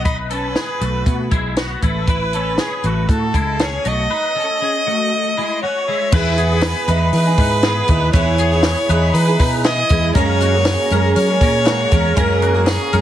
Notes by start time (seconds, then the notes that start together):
Already playing: B1
0.04 D#4 B4 D#5, kick, closed hi-hat
0.30 C#4 A4 B4, closed hi-hat
0.55 B3 G#4, snare, closed hi-hat
0.80 B1 A3 F#4, closed hi-hat
1.06 B2, kick, closed hi-hat
1.31 B1 G#3 E4, kick, closed hi-hat
1.56 B3 F#4, snare, closed hi-hat
1.82 A1 A3 E4 B4, kick, closed hi-hat
2.08 E4 B4, kick, closed hi-hat
2.33 C#4 A4, closed hi-hat
2.58 C#4 G#4, snare, closed hi-hat
2.84 A1 A3 F#4, closed hi-hat
3.09 A2 A4, kick, closed hi-hat
3.34 C#2 G#3 E4, kick, closed hi-hat
3.59 C#4 G#4 C#5, snare, closed hi-hat
3.85 B1 A3 F#4 D#5, closed hi-hat
4.10 D#4 B4
4.35 C#4 A4
4.61 C#4 G#4
4.86 A3 F#4
5.37 G#3 E4
5.63 C#4 F#4 C#5
5.88 G#3 E4
6.12 E2 E3 B3 E4 G#4 B4, kick, crash
6.38 B3 G#4, hi-hat pedal, open hi-hat
6.52 B3 E4 G#4
6.62 snare, clap, hi-hat pedal, open hi-hat
6.88 E2 E3 B3 D#4 E4 G#4 B4, hi-hat pedal, open hi-hat
7.13 E3 B4, hi-hat pedal, open hi-hat
7.27 B3 E4 G#4
7.37 G#2 D#4 B4, kick, hi-hat pedal, open hi-hat
7.62 E3 B3 E4 G#4, snare, clap, hi-hat pedal, open hi-hat
7.67 G#4
7.88 D#2 E3 B3 D#4 E4 G#4 B4, kick, hi-hat pedal, open hi-hat
8.12 E2 E3 B3 E4 G#4 B4 C#5, kick, hi-hat pedal, open hi-hat
8.38 B3 G#4, hi-hat pedal, open hi-hat
8.52 B3 E4 G#4
8.63 snare, clap, hi-hat pedal, open hi-hat
8.89 E2 E3 B3 D#4 E4 G#4 B4, hi-hat pedal, open hi-hat
9.13 E3 B4, hi-hat pedal, open hi-hat
9.28 B3 E4 G#4
9.39 B2 D#4 B4, kick, snare, hi-hat pedal, open hi-hat
9.64 E3 B3 E4 G#4 D#5, snare, clap, hi-hat pedal, open hi-hat
9.89 E2 E3 G#3 B3 E4 G#4, kick, hi-hat pedal, open hi-hat
10.15 F#2 C#3 G#3 A#3 C#4 G#4 A#4 C#5, kick, hi-hat pedal, open hi-hat
10.41 A#3 F#4, hi-hat pedal, open hi-hat
10.54 G#3 A#3 C#4 G#4
10.65 snare, clap, hi-hat pedal, open hi-hat
10.90 F#2 G#3 A#3 C#4 G#4 A#4, hi-hat pedal, open hi-hat
11.16 F#3 C#5, hi-hat pedal, open hi-hat
11.28 G#3 A#3 C#4 G#4
11.41 A#2 C#4 A#4, kick, hi-hat pedal, open hi-hat
11.66 G#3 A#3 C#4 F#4 G#4, snare, clap, hi-hat pedal, open hi-hat
11.91 E2 G#3 A#3 C#4 G#4 A#4, kick, hi-hat pedal, open hi-hat
12.16 F#2 C#3 G#3 A#3 C#4 G#4 A#4, kick, hi-hat pedal, open hi-hat
12.42 A#3 F#4, hi-hat pedal, open hi-hat
12.54 G#3 A#3 C#4 G#4
12.67 G#4, snare, clap, hi-hat pedal, open hi-hat
12.93 F#2 G#3 A#3 C#4 G#4 A#4, hi-hat pedal, open hi-hat